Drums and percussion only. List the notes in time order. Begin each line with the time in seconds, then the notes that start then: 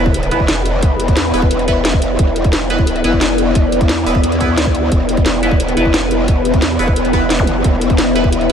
0.06 kick
0.14 closed hi-hat
0.23 closed hi-hat
0.31 closed hi-hat
0.40 kick
0.48 snare, closed hi-hat
0.66 closed hi-hat
0.83 kick, closed hi-hat
1.00 closed hi-hat
1.08 kick, closed hi-hat
1.17 snare, closed hi-hat
1.34 open hi-hat
1.42 kick
1.51 closed hi-hat
1.59 closed hi-hat
1.68 kick, closed hi-hat
1.85 snare, closed hi-hat
1.93 kick
2.02 closed hi-hat
2.19 kick, closed hi-hat
2.36 closed hi-hat
2.44 kick, closed hi-hat
2.53 snare, closed hi-hat
2.70 closed hi-hat
2.79 kick
2.87 closed hi-hat
2.96 closed hi-hat
3.04 closed hi-hat
3.13 kick
3.21 snare, closed hi-hat
3.38 closed hi-hat
3.55 kick, closed hi-hat
3.72 closed hi-hat
3.81 kick, closed hi-hat
3.89 snare, closed hi-hat
4.06 open hi-hat
4.15 kick
4.24 closed hi-hat
4.32 closed hi-hat
4.41 kick, closed hi-hat
4.58 snare, closed hi-hat
4.66 kick
4.75 closed hi-hat
4.92 kick, closed hi-hat
5.09 closed hi-hat
5.17 kick, closed hi-hat
5.26 snare, closed hi-hat
5.43 closed hi-hat
5.51 kick
5.60 closed hi-hat
5.68 closed hi-hat
5.77 closed hi-hat
5.86 kick
5.94 snare, closed hi-hat
6.11 closed hi-hat
6.28 kick, closed hi-hat
6.45 closed hi-hat
6.54 kick, closed hi-hat
6.62 snare, closed hi-hat
6.79 open hi-hat
6.88 kick
6.96 closed hi-hat
7.05 closed hi-hat
7.13 kick, closed hi-hat
7.30 snare, closed hi-hat
7.39 kick
7.47 closed hi-hat
7.64 kick, closed hi-hat
7.81 closed hi-hat
7.90 kick, closed hi-hat
7.98 snare, closed hi-hat
8.16 closed hi-hat
8.24 kick
8.33 closed hi-hat
8.41 closed hi-hat